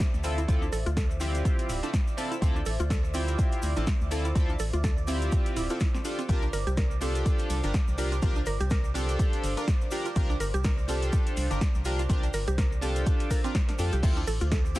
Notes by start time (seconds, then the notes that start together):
Already playing: C5 D5 E5 D6
0.00 kick, snare, closed hi-hat, shaker
0.14 D2, shaker
0.24 C4 E4 F4 A4, open hi-hat, shaker
0.38 E4, closed hi-hat, shaker
0.48 D2 C4 E4 F4 A4, kick, closed hi-hat, shaker
0.62 D4, shaker
0.72 A1 A4, open hi-hat, shaker
0.86 D2 F4, closed hi-hat, shaker
0.97 A4, kick, snare, closed hi-hat, shaker
1.11 shaker
1.20 C4 E4 F4 G4, open hi-hat, shaker
1.35 closed hi-hat, shaker
1.45 kick, closed hi-hat, shaker
1.59 closed hi-hat, shaker
1.69 D1, open hi-hat, shaker
1.83 C4 D4 E4 F4 A4, closed hi-hat, shaker
1.94 kick, snare, closed hi-hat, shaker
2.07 shaker
2.17 C4 E4 F4 A4, open hi-hat, shaker
2.31 E4, closed hi-hat, shaker
2.41 D2 C4 E4 F4 A4, kick, closed hi-hat, shaker
2.56 D4, shaker
2.66 A1 A4, open hi-hat, shaker
2.80 D2 F4, closed hi-hat, shaker
2.90 A4, kick, snare, closed hi-hat, shaker
3.04 shaker
3.14 C4 E4 F4 G4, open hi-hat, shaker
3.28 closed hi-hat, shaker
3.39 kick, closed hi-hat, shaker
3.52 closed hi-hat, shaker
3.62 D2, open hi-hat, shaker
3.76 A1 C4 D4 E4 F4 A4, closed hi-hat, shaker
3.87 kick, snare, closed hi-hat, shaker
4.01 D2, shaker
4.11 C4 E4 F4 A4, open hi-hat, shaker
4.25 E4, closed hi-hat, shaker
4.35 D2 C4 E4 F4 A4, kick, closed hi-hat, shaker
4.49 D4, shaker
4.59 A1 A4, open hi-hat, shaker
4.73 D2 F4, closed hi-hat, shaker
4.84 A4, kick, snare, closed hi-hat, shaker
4.98 shaker
5.07 C4 E4 F4 G4, open hi-hat, shaker
5.22 closed hi-hat, shaker
5.32 kick, closed hi-hat, shaker
5.46 closed hi-hat, shaker
5.56 D1 E4, open hi-hat, shaker
5.69 C4 E4 F4 A4, closed hi-hat, shaker
5.80 E4, kick, snare, closed hi-hat, shaker
5.94 C4, snare, shaker
6.04 D4 F4 G4 A4 C5, open hi-hat, shaker
6.19 C4, closed hi-hat, shaker
6.29 C2 C4 D4 F4 G4 A#4, kick, closed hi-hat, shaker
6.42 D4, shaker
6.53 G1 A#4, open hi-hat, shaker
6.67 C2 G4, closed hi-hat, shaker
6.77 A#4, kick, snare, closed hi-hat, shaker
6.91 shaker
7.01 C4 D4 F4 G4 A4, open hi-hat, shaker
7.15 closed hi-hat, shaker
7.26 kick, closed hi-hat, shaker
7.39 closed hi-hat, shaker
7.50 C2, open hi-hat, shaker
7.63 G1 D4 F4 G4 A#4, closed hi-hat, shaker
7.74 kick, snare, closed hi-hat, shaker
7.88 C2, shaker
7.98 D4 F4 G4 A#4, open hi-hat, shaker
8.12 F4, closed hi-hat, shaker
8.22 C2 C4 D4 F4 G4 A#4, kick, closed hi-hat, shaker
8.36 D4, shaker
8.46 G1 A#4, open hi-hat, shaker
8.60 C2 G4, closed hi-hat, shaker
8.70 A#4, kick, snare, closed hi-hat, shaker
8.84 shaker
8.94 C4 D4 F4 G4 A4, open hi-hat, shaker
9.09 closed hi-hat, shaker
9.19 kick, closed hi-hat, shaker
9.33 closed hi-hat, shaker
9.43 G1, open hi-hat, shaker
9.57 D4 F4 G4 A#4, closed hi-hat, shaker
9.68 kick, snare, closed hi-hat, shaker
9.81 shaker
9.91 D4 F4 G4 A#4, open hi-hat, shaker
10.05 F4, closed hi-hat, shaker
10.16 C2 C4 D4 F4 G4 A#4, kick, closed hi-hat, shaker
10.30 D4, shaker
10.40 G1 A#4, open hi-hat, shaker
10.54 C2 G4, closed hi-hat, shaker
10.64 A#4, kick, snare, closed hi-hat, shaker
10.78 shaker
10.88 C4 D4 F4 G4 A4, open hi-hat, shaker
11.02 closed hi-hat, shaker
11.13 kick, closed hi-hat, shaker
11.27 closed hi-hat, shaker
11.37 C2, open hi-hat, shaker
11.50 G1 D4 F4 G4 A#4, closed hi-hat, shaker
11.61 kick, snare, closed hi-hat, shaker
11.75 C2, shaker
11.85 D4 F4 G4 A#4, open hi-hat, shaker
11.99 F4, closed hi-hat, shaker
12.09 C2 C4 D4 F4 G4 A#4, kick, closed hi-hat, shaker
12.23 D4, closed hi-hat, shaker
12.34 G1 A#4, open hi-hat, shaker
12.48 C2 G4, closed hi-hat, shaker
12.58 A#4, kick, snare, closed hi-hat, shaker
12.72 shaker
12.81 C4 D4 F4 G4 A4, open hi-hat, shaker
12.96 closed hi-hat, shaker
13.06 kick, closed hi-hat, shaker
13.20 closed hi-hat, shaker
13.31 A#4, kick, open hi-hat, shaker
13.44 C4 D4 F4 G4 A#4, closed hi-hat, shaker
13.55 C5, kick, snare, closed hi-hat, shaker
13.69 D4, snare, closed hi-hat, shaker
13.79 F2 D4 F4 G4 A4, open hi-hat, shaker
13.92 C2 G4, closed hi-hat, shaker
14.03 D2 C4 E4 F4 A4 C5 E5 D6, kick, closed hi-hat, crash, shaker
14.16 D4, shaker
14.27 A1 A4, open hi-hat, shaker
14.40 D2 F4, closed hi-hat, shaker
14.52 A4, kick, snare, closed hi-hat, shaker
14.65 shaker
14.75 C4 E4 F4, snare, open hi-hat, shaker